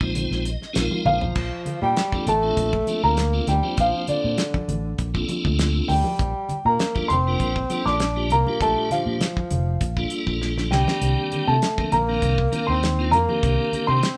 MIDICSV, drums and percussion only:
0, 0, Header, 1, 2, 480
1, 0, Start_track
1, 0, Tempo, 603622
1, 1081, Time_signature, 4, 2, 24, 8
1, 11269, End_track
2, 0, Start_track
2, 0, Title_t, "Drums"
2, 6, Note_on_c, 9, 36, 70
2, 86, Note_off_c, 9, 36, 0
2, 120, Note_on_c, 9, 64, 59
2, 121, Note_on_c, 9, 42, 72
2, 199, Note_off_c, 9, 64, 0
2, 200, Note_off_c, 9, 42, 0
2, 252, Note_on_c, 9, 38, 33
2, 331, Note_off_c, 9, 38, 0
2, 361, Note_on_c, 9, 42, 57
2, 441, Note_off_c, 9, 42, 0
2, 494, Note_on_c, 9, 38, 31
2, 574, Note_off_c, 9, 38, 0
2, 599, Note_on_c, 9, 42, 84
2, 604, Note_on_c, 9, 38, 95
2, 678, Note_off_c, 9, 42, 0
2, 683, Note_off_c, 9, 38, 0
2, 725, Note_on_c, 9, 63, 66
2, 804, Note_off_c, 9, 63, 0
2, 839, Note_on_c, 9, 64, 77
2, 841, Note_on_c, 9, 48, 62
2, 918, Note_off_c, 9, 64, 0
2, 920, Note_off_c, 9, 48, 0
2, 963, Note_on_c, 9, 63, 68
2, 965, Note_on_c, 9, 43, 74
2, 1043, Note_off_c, 9, 63, 0
2, 1045, Note_off_c, 9, 43, 0
2, 1076, Note_on_c, 9, 49, 72
2, 1080, Note_on_c, 9, 36, 92
2, 1156, Note_off_c, 9, 49, 0
2, 1160, Note_off_c, 9, 36, 0
2, 1320, Note_on_c, 9, 64, 58
2, 1321, Note_on_c, 9, 42, 46
2, 1399, Note_off_c, 9, 64, 0
2, 1400, Note_off_c, 9, 42, 0
2, 1563, Note_on_c, 9, 42, 71
2, 1568, Note_on_c, 9, 38, 105
2, 1643, Note_off_c, 9, 42, 0
2, 1647, Note_off_c, 9, 38, 0
2, 1689, Note_on_c, 9, 36, 77
2, 1692, Note_on_c, 9, 63, 65
2, 1769, Note_off_c, 9, 36, 0
2, 1771, Note_off_c, 9, 63, 0
2, 1804, Note_on_c, 9, 42, 48
2, 1808, Note_on_c, 9, 64, 63
2, 1883, Note_off_c, 9, 42, 0
2, 1888, Note_off_c, 9, 64, 0
2, 2045, Note_on_c, 9, 36, 68
2, 2045, Note_on_c, 9, 42, 73
2, 2124, Note_off_c, 9, 36, 0
2, 2124, Note_off_c, 9, 42, 0
2, 2171, Note_on_c, 9, 36, 77
2, 2250, Note_off_c, 9, 36, 0
2, 2282, Note_on_c, 9, 63, 58
2, 2283, Note_on_c, 9, 42, 53
2, 2361, Note_off_c, 9, 63, 0
2, 2362, Note_off_c, 9, 42, 0
2, 2522, Note_on_c, 9, 42, 72
2, 2526, Note_on_c, 9, 38, 94
2, 2601, Note_off_c, 9, 42, 0
2, 2606, Note_off_c, 9, 38, 0
2, 2760, Note_on_c, 9, 64, 70
2, 2761, Note_on_c, 9, 42, 53
2, 2766, Note_on_c, 9, 38, 28
2, 2840, Note_off_c, 9, 64, 0
2, 2841, Note_off_c, 9, 42, 0
2, 2846, Note_off_c, 9, 38, 0
2, 2889, Note_on_c, 9, 63, 63
2, 2969, Note_off_c, 9, 63, 0
2, 3001, Note_on_c, 9, 42, 67
2, 3004, Note_on_c, 9, 36, 94
2, 3080, Note_off_c, 9, 42, 0
2, 3084, Note_off_c, 9, 36, 0
2, 3240, Note_on_c, 9, 42, 52
2, 3243, Note_on_c, 9, 64, 53
2, 3320, Note_off_c, 9, 42, 0
2, 3322, Note_off_c, 9, 64, 0
2, 3480, Note_on_c, 9, 42, 76
2, 3485, Note_on_c, 9, 38, 100
2, 3560, Note_off_c, 9, 42, 0
2, 3564, Note_off_c, 9, 38, 0
2, 3611, Note_on_c, 9, 36, 72
2, 3612, Note_on_c, 9, 63, 65
2, 3691, Note_off_c, 9, 36, 0
2, 3691, Note_off_c, 9, 63, 0
2, 3724, Note_on_c, 9, 64, 68
2, 3727, Note_on_c, 9, 42, 55
2, 3803, Note_off_c, 9, 64, 0
2, 3807, Note_off_c, 9, 42, 0
2, 3963, Note_on_c, 9, 42, 69
2, 3966, Note_on_c, 9, 36, 67
2, 4043, Note_off_c, 9, 42, 0
2, 4045, Note_off_c, 9, 36, 0
2, 4093, Note_on_c, 9, 36, 75
2, 4172, Note_off_c, 9, 36, 0
2, 4204, Note_on_c, 9, 42, 54
2, 4207, Note_on_c, 9, 63, 67
2, 4283, Note_off_c, 9, 42, 0
2, 4286, Note_off_c, 9, 63, 0
2, 4332, Note_on_c, 9, 36, 70
2, 4412, Note_off_c, 9, 36, 0
2, 4443, Note_on_c, 9, 42, 77
2, 4448, Note_on_c, 9, 38, 94
2, 4523, Note_off_c, 9, 42, 0
2, 4528, Note_off_c, 9, 38, 0
2, 4681, Note_on_c, 9, 64, 69
2, 4686, Note_on_c, 9, 46, 72
2, 4761, Note_off_c, 9, 64, 0
2, 4765, Note_off_c, 9, 46, 0
2, 4804, Note_on_c, 9, 63, 73
2, 4883, Note_off_c, 9, 63, 0
2, 4924, Note_on_c, 9, 42, 67
2, 4925, Note_on_c, 9, 36, 91
2, 5004, Note_off_c, 9, 42, 0
2, 5005, Note_off_c, 9, 36, 0
2, 5159, Note_on_c, 9, 64, 54
2, 5165, Note_on_c, 9, 42, 53
2, 5239, Note_off_c, 9, 64, 0
2, 5244, Note_off_c, 9, 42, 0
2, 5403, Note_on_c, 9, 42, 73
2, 5408, Note_on_c, 9, 38, 109
2, 5483, Note_off_c, 9, 42, 0
2, 5488, Note_off_c, 9, 38, 0
2, 5531, Note_on_c, 9, 63, 60
2, 5532, Note_on_c, 9, 36, 72
2, 5610, Note_off_c, 9, 63, 0
2, 5611, Note_off_c, 9, 36, 0
2, 5646, Note_on_c, 9, 42, 50
2, 5646, Note_on_c, 9, 64, 65
2, 5725, Note_off_c, 9, 42, 0
2, 5725, Note_off_c, 9, 64, 0
2, 5882, Note_on_c, 9, 42, 61
2, 5884, Note_on_c, 9, 36, 66
2, 5961, Note_off_c, 9, 42, 0
2, 5963, Note_off_c, 9, 36, 0
2, 6010, Note_on_c, 9, 36, 73
2, 6090, Note_off_c, 9, 36, 0
2, 6121, Note_on_c, 9, 42, 47
2, 6123, Note_on_c, 9, 63, 64
2, 6200, Note_off_c, 9, 42, 0
2, 6202, Note_off_c, 9, 63, 0
2, 6253, Note_on_c, 9, 38, 31
2, 6332, Note_off_c, 9, 38, 0
2, 6360, Note_on_c, 9, 42, 72
2, 6365, Note_on_c, 9, 38, 95
2, 6439, Note_off_c, 9, 42, 0
2, 6444, Note_off_c, 9, 38, 0
2, 6601, Note_on_c, 9, 42, 53
2, 6607, Note_on_c, 9, 64, 60
2, 6681, Note_off_c, 9, 42, 0
2, 6686, Note_off_c, 9, 64, 0
2, 6732, Note_on_c, 9, 63, 57
2, 6812, Note_off_c, 9, 63, 0
2, 6843, Note_on_c, 9, 36, 95
2, 6843, Note_on_c, 9, 42, 64
2, 6922, Note_off_c, 9, 42, 0
2, 6923, Note_off_c, 9, 36, 0
2, 7080, Note_on_c, 9, 64, 48
2, 7085, Note_on_c, 9, 42, 52
2, 7090, Note_on_c, 9, 38, 27
2, 7160, Note_off_c, 9, 64, 0
2, 7165, Note_off_c, 9, 42, 0
2, 7169, Note_off_c, 9, 38, 0
2, 7319, Note_on_c, 9, 64, 54
2, 7321, Note_on_c, 9, 42, 81
2, 7326, Note_on_c, 9, 38, 97
2, 7399, Note_off_c, 9, 64, 0
2, 7400, Note_off_c, 9, 42, 0
2, 7405, Note_off_c, 9, 38, 0
2, 7449, Note_on_c, 9, 36, 74
2, 7449, Note_on_c, 9, 63, 62
2, 7528, Note_off_c, 9, 36, 0
2, 7528, Note_off_c, 9, 63, 0
2, 7559, Note_on_c, 9, 42, 61
2, 7562, Note_on_c, 9, 63, 60
2, 7562, Note_on_c, 9, 64, 58
2, 7638, Note_off_c, 9, 42, 0
2, 7641, Note_off_c, 9, 63, 0
2, 7641, Note_off_c, 9, 64, 0
2, 7799, Note_on_c, 9, 42, 72
2, 7800, Note_on_c, 9, 36, 69
2, 7878, Note_off_c, 9, 42, 0
2, 7880, Note_off_c, 9, 36, 0
2, 7926, Note_on_c, 9, 36, 75
2, 8005, Note_off_c, 9, 36, 0
2, 8033, Note_on_c, 9, 42, 53
2, 8113, Note_off_c, 9, 42, 0
2, 8166, Note_on_c, 9, 36, 65
2, 8245, Note_off_c, 9, 36, 0
2, 8283, Note_on_c, 9, 38, 52
2, 8362, Note_off_c, 9, 38, 0
2, 8409, Note_on_c, 9, 63, 60
2, 8411, Note_on_c, 9, 38, 51
2, 8489, Note_off_c, 9, 63, 0
2, 8490, Note_off_c, 9, 38, 0
2, 8524, Note_on_c, 9, 38, 81
2, 8526, Note_on_c, 9, 64, 64
2, 8604, Note_off_c, 9, 38, 0
2, 8606, Note_off_c, 9, 64, 0
2, 8651, Note_on_c, 9, 38, 74
2, 8656, Note_on_c, 9, 63, 66
2, 8731, Note_off_c, 9, 38, 0
2, 8735, Note_off_c, 9, 63, 0
2, 8760, Note_on_c, 9, 42, 72
2, 8839, Note_off_c, 9, 42, 0
2, 8999, Note_on_c, 9, 42, 47
2, 9007, Note_on_c, 9, 64, 55
2, 9079, Note_off_c, 9, 42, 0
2, 9086, Note_off_c, 9, 64, 0
2, 9242, Note_on_c, 9, 42, 77
2, 9246, Note_on_c, 9, 38, 99
2, 9321, Note_off_c, 9, 42, 0
2, 9326, Note_off_c, 9, 38, 0
2, 9367, Note_on_c, 9, 63, 64
2, 9368, Note_on_c, 9, 36, 79
2, 9446, Note_off_c, 9, 63, 0
2, 9447, Note_off_c, 9, 36, 0
2, 9479, Note_on_c, 9, 42, 52
2, 9479, Note_on_c, 9, 64, 61
2, 9558, Note_off_c, 9, 42, 0
2, 9558, Note_off_c, 9, 64, 0
2, 9718, Note_on_c, 9, 42, 69
2, 9719, Note_on_c, 9, 36, 62
2, 9797, Note_off_c, 9, 42, 0
2, 9798, Note_off_c, 9, 36, 0
2, 9846, Note_on_c, 9, 36, 71
2, 9925, Note_off_c, 9, 36, 0
2, 9960, Note_on_c, 9, 63, 66
2, 9961, Note_on_c, 9, 42, 53
2, 10039, Note_off_c, 9, 63, 0
2, 10040, Note_off_c, 9, 42, 0
2, 10203, Note_on_c, 9, 42, 72
2, 10208, Note_on_c, 9, 38, 93
2, 10282, Note_off_c, 9, 42, 0
2, 10287, Note_off_c, 9, 38, 0
2, 10434, Note_on_c, 9, 64, 70
2, 10441, Note_on_c, 9, 42, 58
2, 10514, Note_off_c, 9, 64, 0
2, 10521, Note_off_c, 9, 42, 0
2, 10565, Note_on_c, 9, 63, 68
2, 10645, Note_off_c, 9, 63, 0
2, 10680, Note_on_c, 9, 36, 92
2, 10680, Note_on_c, 9, 42, 63
2, 10759, Note_off_c, 9, 36, 0
2, 10760, Note_off_c, 9, 42, 0
2, 10917, Note_on_c, 9, 64, 59
2, 10920, Note_on_c, 9, 42, 49
2, 10996, Note_off_c, 9, 64, 0
2, 11000, Note_off_c, 9, 42, 0
2, 11155, Note_on_c, 9, 42, 74
2, 11160, Note_on_c, 9, 38, 103
2, 11234, Note_off_c, 9, 42, 0
2, 11239, Note_off_c, 9, 38, 0
2, 11269, End_track
0, 0, End_of_file